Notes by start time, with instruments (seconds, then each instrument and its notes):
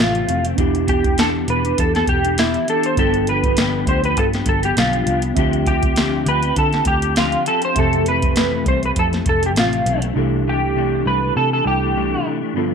Already playing: picked electric bass A1, clean electric guitar F2 C3, tine electric piano C4 G4 A4 E5
0.00 clean electric guitar A3 C4, electric slide guitar F4, snare
0.15 closed hi-hat
0.27 picked electric bass F1, clean electric guitar C3 E3 A3 C4, closed hi-hat
0.44 clean electric guitar E3 A3 C4, closed hi-hat
0.55 picked electric bass E1, clean electric guitar E3 B3 D4, tine electric piano B3 D4 E4, kick, closed hi-hat
0.59 clean electric guitar G4, tine electric piano G4
0.75 closed hi-hat
0.87 clean electric guitar E3 B3 D4 G4, electric slide guitar G4, kick, closed hi-hat
1.04 clean electric guitar B3 D4 G4, kick, closed hi-hat
1.18 clean electric guitar E3 B3 D4 G4, electric slide guitar A4, snare, closed hi-hat
1.48 picked electric bass E1, clean electric guitar E3 B3 D4 G4, electric slide guitar B4, closed hi-hat
1.64 clean electric guitar B3 D4 G4, closed hi-hat
1.78 picked electric bass E2, electric slide guitar A4, kick, closed hi-hat
1.93 clean electric guitar B3 D4 G4, electric slide guitar A4, snare, closed hi-hat
2.07 picked electric bass E1, electric slide guitar G4, kick, closed hi-hat
2.23 clean electric guitar B3 D4 G4, closed hi-hat
2.37 clean electric guitar E3 B3 D4 G4, electric slide guitar E4, snare, closed hi-hat
2.54 closed hi-hat
2.67 clean electric guitar E3 B3 D4 G4, electric slide guitar A4, closed hi-hat
2.83 electric slide guitar C5, closed hi-hat
2.95 picked electric bass G1, clean electric guitar G2 D3 F3, tine electric piano B3 D4 F4, kick, closed hi-hat
2.99 clean electric guitar B3 D4 G4, electric slide guitar A4, tine electric piano A4
3.14 closed hi-hat
3.27 clean electric guitar F3 B3 D4 G4, electric slide guitar B4, closed hi-hat
3.44 clean electric guitar B3 D4 G4, kick, closed hi-hat
3.48 clean electric guitar F3
3.57 clean electric guitar G2 D3 F3 B3 D4 G4, snare, closed hi-hat
3.87 picked electric bass D2, clean electric guitar F3 B3 D4 G4, electric slide guitar C5, kick, closed hi-hat
4.03 clean electric guitar F3 B3 D4 G4, electric slide guitar B4, closed hi-hat
4.17 picked electric bass G2, electric slide guitar A4, kick, closed hi-hat
4.33 clean electric guitar F3 B3 D4 G4, snare, closed hi-hat
4.46 picked electric bass G1, electric slide guitar A4, kick, closed hi-hat
4.63 clean electric guitar F3 B3 D4 G4, electric slide guitar G4, closed hi-hat
4.77 picked electric bass B1, clean electric guitar G2 D3 F3 B3 D4 G4, electric slide guitar F4, snare, closed hi-hat
4.93 closed hi-hat
5.06 picked electric bass C2, clean electric guitar F3 B3 D4 G4, closed hi-hat
5.22 closed hi-hat
5.34 picked electric bass D2, clean electric guitar D3 F3 C4, tine electric piano C4 F4 E5, kick, closed hi-hat
5.38 clean electric guitar D4 G4, tine electric piano G4
5.53 closed hi-hat
5.66 clean electric guitar F3 C4 D4 G4, electric slide guitar G4, kick, closed hi-hat
5.83 clean electric guitar C4 D4 G4, kick, closed hi-hat
5.96 clean electric guitar D3 F3 C4 D4 G4, snare, closed hi-hat
6.26 picked electric bass D2, clean electric guitar F3 C4 D4 G4, electric slide guitar B4, closed hi-hat
6.43 clean electric guitar C4 D4 G4, closed hi-hat
6.56 picked electric bass D3, electric slide guitar A4, kick, closed hi-hat
6.73 clean electric guitar C4 D4 G4, snare, closed hi-hat
6.85 picked electric bass D2, electric slide guitar G4, kick, closed hi-hat
7.02 clean electric guitar C4 D4 G4, closed hi-hat
7.16 clean electric guitar D3 F3 C4 D4 G4, electric slide guitar F4, snare, closed hi-hat
7.32 closed hi-hat
7.46 clean electric guitar F3 C4 D4 G4, electric slide guitar A4, closed hi-hat
7.62 electric slide guitar C5, closed hi-hat
7.74 picked electric bass F1, clean electric guitar F2 C3 E3, tine electric piano C4 G4 E5, kick, closed hi-hat
7.78 clean electric guitar A3 C4, tine electric piano A4, electric slide guitar A4
7.93 closed hi-hat
8.06 clean electric guitar C3 E3 A3 C4, electric slide guitar B4, closed hi-hat
8.22 clean electric guitar E3 A3 C4, kick, closed hi-hat
8.36 clean electric guitar F2 C3 E3 A3 C4, snare, closed hi-hat
8.66 picked electric bass C2, clean electric guitar C3 E3 A3 C4, electric slide guitar C5, kick, closed hi-hat
8.83 clean electric guitar E3 A3 C4, electric slide guitar B4, closed hi-hat
8.96 picked electric bass F2, electric slide guitar A4, kick, closed hi-hat
9.13 clean electric guitar E3 A3 C4, snare, closed hi-hat
9.26 picked electric bass F1, electric slide guitar A4, kick, closed hi-hat
9.43 clean electric guitar E3 A3 C4, electric slide guitar G4, closed hi-hat
9.56 picked electric bass A1, clean electric guitar F2 C3 A3 C4, electric slide guitar F4, snare, closed hi-hat
9.73 closed hi-hat
9.86 picked electric bass B1, clean electric guitar C3 E3 A3 C4, closed hi-hat
10.02 clean electric guitar E3 A3 C4, closed hi-hat
10.14 picked electric bass C2, clean electric guitar C3 E3 A3 D4, tine electric piano D4 E4 G4
10.18 tine electric piano A4
10.46 clean electric guitar C3 E3 A3 D4, electric slide guitar G4
10.62 clean electric guitar E3 A3 D4
10.75 clean electric guitar C3 E3 A3 D4
11.06 picked electric bass C2, clean electric guitar C3 E3 A3 D4, electric slide guitar B4
11.22 clean electric guitar E3 A3 D4
11.36 picked electric bass C3, electric slide guitar A4
11.52 clean electric guitar E3 A3 D4, electric slide guitar A4
11.64 picked electric bass C2, tine electric piano D4 E4 G4 A4, electric slide guitar G4
11.81 clean electric guitar E3 A3 D4
11.95 clean electric guitar C3 E3 A3 D4
12.25 clean electric guitar C3 E3 A3 D4
12.41 clean electric guitar E3 A3 D4
12.53 tine electric piano G2 B3 D4 F4, clean electric guitar G2 D3 F3 B3 D4
12.58 tine electric piano A4